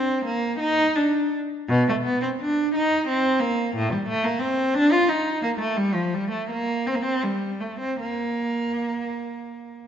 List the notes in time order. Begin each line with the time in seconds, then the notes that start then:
Already playing: C4
0.25 A#3
0.59 D#4
0.96 D4
1.69 B2
1.89 A3
2.04 B3
2.22 C4
2.41 D4
2.75 D#4
3.08 C4
3.40 A#3
3.76 A2
3.92 G3
4.08 A3
4.24 A#3
4.39 C4
4.74 D4
4.92 F4
5.09 D#4
5.43 A#3
5.59 A3
5.77 G3
5.94 F3
6.14 G3
6.31 A3
6.51 A#3
6.87 C4
6.95 A#3
7.02 C4
7.23 G3
7.60 A3
7.80 C4
8.00 A#3